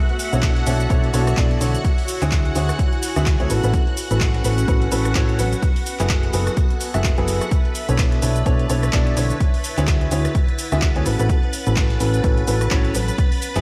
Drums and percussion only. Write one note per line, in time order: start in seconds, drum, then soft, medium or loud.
0.09 closed hi-hat soft
0.19 closed hi-hat medium
0.19 open hi-hat loud
0.19 cabasa medium
0.33 closed hi-hat medium
0.33 cabasa soft
0.42 kick loud
0.42 snare loud
0.42 clap loud
0.42 closed hi-hat medium
0.42 open hi-hat medium
0.42 cabasa soft
0.56 snare medium
0.56 closed hi-hat soft
0.66 snare soft
0.66 closed hi-hat medium
0.66 open hi-hat loud
0.66 cabasa medium
0.80 closed hi-hat medium
0.80 cabasa soft
0.90 kick loud
0.90 closed hi-hat medium
0.90 cabasa soft
1.04 closed hi-hat soft
1.14 closed hi-hat medium
1.14 open hi-hat loud
1.14 cabasa medium
1.27 cross-stick medium
1.27 closed hi-hat medium
1.27 cabasa soft
1.37 kick loud
1.37 snare loud
1.37 clap loud
1.37 closed hi-hat medium
1.37 cabasa soft
1.51 closed hi-hat soft
1.61 snare medium
1.61 closed hi-hat medium
1.61 open hi-hat loud
1.61 cabasa medium
1.75 closed hi-hat soft
1.75 cabasa soft
1.85 kick loud
1.85 closed hi-hat medium
1.85 cabasa soft
1.98 open hi-hat medium
2.08 closed hi-hat medium
2.08 open hi-hat loud
2.08 cabasa medium
2.21 clap soft
2.21 closed hi-hat medium
2.21 cabasa soft
2.31 kick loud
2.31 snare loud
2.31 clap loud
2.31 closed hi-hat medium
2.31 cabasa soft
2.45 closed hi-hat soft
2.55 closed hi-hat medium
2.55 open hi-hat loud
2.55 cabasa medium
2.69 cross-stick medium
2.69 snare soft
2.69 closed hi-hat medium
2.69 cabasa soft
2.79 kick loud
2.79 closed hi-hat medium
2.79 cabasa soft
2.93 closed hi-hat soft
3.03 closed hi-hat medium
3.03 open hi-hat loud
3.03 cabasa medium
3.16 cross-stick medium
3.16 snare soft
3.16 closed hi-hat medium
3.16 cabasa soft
3.26 kick loud
3.26 snare loud
3.26 clap loud
3.26 closed hi-hat medium
3.26 cabasa soft
3.40 closed hi-hat soft
3.50 closed hi-hat medium
3.50 open hi-hat loud
3.50 cabasa medium
3.64 closed hi-hat medium
3.64 cabasa soft
3.74 kick loud
3.74 closed hi-hat medium
3.74 cabasa soft
3.87 closed hi-hat soft
3.97 closed hi-hat medium
3.97 open hi-hat loud
3.97 cabasa medium
4.11 closed hi-hat medium
4.11 cabasa soft
4.20 kick loud
4.20 snare loud
4.20 clap loud
4.20 closed hi-hat medium
4.20 open hi-hat medium
4.20 cabasa soft
4.34 snare medium
4.34 closed hi-hat soft
4.44 snare soft
4.44 closed hi-hat medium
4.44 open hi-hat loud
4.44 cabasa medium
4.58 closed hi-hat medium
4.58 cabasa soft
4.68 kick loud
4.68 closed hi-hat medium
4.68 cabasa soft
4.82 closed hi-hat soft
4.92 closed hi-hat medium
4.92 open hi-hat loud
4.92 cabasa medium
5.05 cross-stick medium
5.05 closed hi-hat medium
5.05 cabasa soft
5.15 kick loud
5.15 snare loud
5.15 clap loud
5.15 closed hi-hat medium
5.15 cabasa soft
5.29 closed hi-hat soft
5.39 snare medium
5.39 closed hi-hat medium
5.39 open hi-hat loud
5.39 cabasa medium
5.52 closed hi-hat medium
5.52 cabasa soft
5.62 kick loud
5.62 closed hi-hat medium
5.62 cabasa soft
5.76 open hi-hat medium
5.86 closed hi-hat medium
5.86 open hi-hat loud
5.86 cabasa medium
5.99 clap soft
5.99 closed hi-hat medium
5.99 cabasa soft
6.09 kick loud
6.09 snare loud
6.09 clap loud
6.09 closed hi-hat medium
6.09 cabasa soft
6.23 closed hi-hat soft
6.33 closed hi-hat medium
6.33 open hi-hat loud
6.33 cabasa medium
6.47 cross-stick medium
6.47 snare soft
6.47 closed hi-hat medium
6.47 cabasa soft
6.57 kick loud
6.57 closed hi-hat medium
6.57 cabasa soft
6.70 closed hi-hat soft
6.81 closed hi-hat medium
6.81 open hi-hat loud
6.81 cabasa medium
6.94 cross-stick medium
6.94 snare soft
6.94 closed hi-hat medium
6.94 cabasa soft
7.04 kick loud
7.04 clap loud
7.04 closed hi-hat medium
7.04 cabasa soft
7.18 closed hi-hat soft
7.28 closed hi-hat medium
7.28 open hi-hat loud
7.28 cabasa medium
7.41 cross-stick medium
7.41 closed hi-hat medium
7.41 cabasa soft
7.51 kick loud
7.51 closed hi-hat medium
7.51 cabasa soft
7.65 closed hi-hat soft
7.75 closed hi-hat medium
7.75 open hi-hat loud
7.75 cabasa medium
7.89 closed hi-hat medium
7.89 cabasa soft
7.98 kick loud
7.98 snare loud
7.98 clap loud
7.98 closed hi-hat medium
7.98 open hi-hat medium
7.98 cabasa soft
8.12 snare medium
8.12 closed hi-hat soft
8.22 snare soft
8.22 closed hi-hat medium
8.22 open hi-hat loud
8.22 cabasa medium
8.36 closed hi-hat medium
8.36 cabasa soft
8.46 kick loud
8.46 closed hi-hat medium
8.46 cabasa soft
8.59 closed hi-hat soft
8.70 closed hi-hat medium
8.70 open hi-hat loud
8.70 cabasa medium
8.83 cross-stick medium
8.83 closed hi-hat medium
8.83 cabasa soft
8.93 kick loud
8.93 snare loud
8.93 clap loud
8.93 closed hi-hat medium
8.93 cabasa soft
9.07 closed hi-hat soft
9.17 snare medium
9.17 closed hi-hat medium
9.17 open hi-hat loud
9.17 cabasa medium
9.30 closed hi-hat medium
9.30 cabasa soft
9.40 kick loud
9.40 closed hi-hat medium
9.40 cabasa soft
9.54 open hi-hat medium
9.64 closed hi-hat medium
9.64 open hi-hat loud
9.64 cabasa medium
9.77 clap soft
9.77 closed hi-hat medium
9.77 cabasa soft
9.87 kick loud
9.87 snare loud
9.87 clap loud
9.87 closed hi-hat medium
9.87 cabasa soft
10.01 closed hi-hat soft
10.11 closed hi-hat medium
10.11 open hi-hat loud
10.11 cabasa medium
10.25 cross-stick medium
10.25 snare soft
10.25 closed hi-hat medium
10.25 cabasa soft
10.35 kick loud
10.35 closed hi-hat medium
10.35 cabasa soft
10.48 closed hi-hat soft
10.59 closed hi-hat medium
10.59 open hi-hat loud
10.59 cabasa medium
10.72 cross-stick medium
10.72 snare soft
10.72 closed hi-hat medium
10.72 cabasa soft
10.82 kick loud
10.82 snare loud
10.82 clap loud
10.82 closed hi-hat medium
10.82 cabasa soft
10.96 closed hi-hat soft
11.06 closed hi-hat medium
11.06 open hi-hat loud
11.06 cabasa medium
11.19 closed hi-hat medium
11.19 cabasa soft
11.29 kick loud
11.29 closed hi-hat medium
11.29 cabasa soft
11.43 closed hi-hat soft
11.53 closed hi-hat medium
11.53 open hi-hat loud
11.53 cabasa medium
11.67 closed hi-hat medium
11.67 cabasa soft
11.76 kick loud
11.76 snare loud
11.76 clap loud
11.76 closed hi-hat medium
11.76 open hi-hat medium
11.76 cabasa soft
11.90 snare medium
11.90 closed hi-hat soft
12.00 snare soft
12.00 closed hi-hat medium
12.00 open hi-hat loud
12.00 cabasa medium
12.14 closed hi-hat medium
12.14 cabasa soft
12.24 kick loud
12.24 closed hi-hat medium
12.24 cabasa soft
12.37 closed hi-hat soft
12.47 closed hi-hat medium
12.47 open hi-hat loud
12.47 cabasa medium
12.61 cross-stick medium
12.61 closed hi-hat medium
12.61 cabasa soft
12.71 kick loud
12.71 snare loud
12.71 clap loud
12.71 closed hi-hat medium
12.71 cabasa soft
12.85 closed hi-hat soft
12.95 snare medium
12.95 closed hi-hat medium
12.95 open hi-hat loud
12.95 cabasa medium
13.08 closed hi-hat medium
13.08 cabasa soft
13.18 kick loud
13.18 closed hi-hat medium
13.18 cabasa soft
13.32 open hi-hat medium
13.42 closed hi-hat medium
13.42 open hi-hat loud
13.42 cabasa medium
13.55 clap soft
13.55 closed hi-hat soft
13.55 cabasa soft